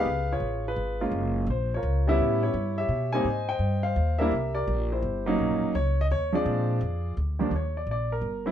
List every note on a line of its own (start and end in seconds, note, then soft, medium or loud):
0.00 0.31 G#4 medium
0.00 0.47 B4 medium
0.00 0.32 F5 loud
0.05 0.39 C#2 medium
0.32 0.67 F4 medium
0.32 0.67 G#4 medium
0.32 0.64 C#5 medium
0.40 0.75 A1 medium
0.68 1.00 F4 medium
0.68 1.11 G#4 medium
0.68 0.99 B4 medium
0.76 1.11 G#1 medium
1.01 1.46 G#3 medium
1.01 1.46 A#3 medium
1.01 1.46 C#4 medium
1.01 1.46 F4 medium
1.11 1.46 F#1 medium
1.47 1.82 A#1 medium
1.47 1.71 C5 medium
1.74 2.18 F4 medium
1.74 2.19 A#4 medium
1.74 2.10 C#5 medium
1.83 2.17 C#2 medium
2.07 2.52 G3 medium
2.07 2.53 B3 medium
2.07 2.53 C#4 medium
2.07 2.44 E4 medium
2.07 2.45 G4 medium
2.07 2.41 C#5 medium
2.07 2.41 E5 medium
2.18 2.53 A2 medium
2.43 2.89 E4 medium
2.43 2.78 G4 medium
2.43 2.78 C#5 medium
2.54 2.88 G2 medium
2.78 3.23 G4 medium
2.78 3.23 C#5 medium
2.78 3.11 E5 loud
2.89 3.24 B2 medium
3.13 3.25 G3 medium
3.13 3.25 A#3 medium
3.13 3.25 C4 medium
3.13 3.25 D#4 medium
3.13 3.48 C5 medium
3.13 3.48 D#5 medium
3.13 3.50 G#5 loud
3.24 3.58 G#2 medium
3.49 3.83 C5 medium
3.49 4.01 D#5 medium
3.49 3.85 G5 loud
3.59 3.95 G2 medium
3.83 4.29 C5 medium
3.83 4.20 F5 medium
3.96 4.31 D#2 medium
4.19 4.31 G3 medium
4.19 4.32 A#3 medium
4.19 4.32 D4 medium
4.19 4.32 E4 medium
4.19 4.53 G4 medium
4.19 4.53 A#4 medium
4.19 4.52 E5 medium
4.31 4.66 C2 medium
4.55 4.91 G4 medium
4.55 5.00 A#4 medium
4.55 4.92 D5 medium
4.67 5.02 A#1 medium
4.92 5.36 E4 medium
4.92 5.36 G4 medium
4.92 5.25 C5 medium
5.02 5.37 G1 medium
5.26 5.72 F#3 medium
5.26 5.72 A#3 medium
5.26 5.72 C#4 medium
5.26 5.72 D#4 medium
5.38 5.50 B1 medium
5.50 5.62 A#1 medium
5.62 5.73 F#1 medium
5.75 6.09 C#2 medium
5.75 5.99 C#5 medium
6.01 6.06 D#5 medium
6.11 6.45 D#2 medium
6.11 6.35 C#5 loud
6.33 6.78 F3 medium
6.33 6.78 G#3 medium
6.33 6.78 C4 medium
6.33 6.79 D4 medium
6.33 7.13 F4 medium
6.33 7.13 G#4 medium
6.33 7.13 D5 medium
6.46 6.80 A#2 medium
6.81 7.15 F2 medium
7.17 7.50 D2 medium
7.39 7.50 D#2 medium
7.39 7.51 F3 medium
7.39 7.51 G3 medium
7.39 7.51 A#3 medium
7.39 7.51 D4 medium
7.51 7.86 D#2 medium
7.56 7.76 C#5 medium
7.77 7.88 D5 medium
7.87 8.21 A#1 medium
7.91 8.12 D5 medium
8.12 8.51 A#4 medium
8.21 8.51 G1 medium
8.46 8.51 F#3 medium
8.46 8.51 B3 medium
8.46 8.51 C4 medium
8.46 8.51 E4 medium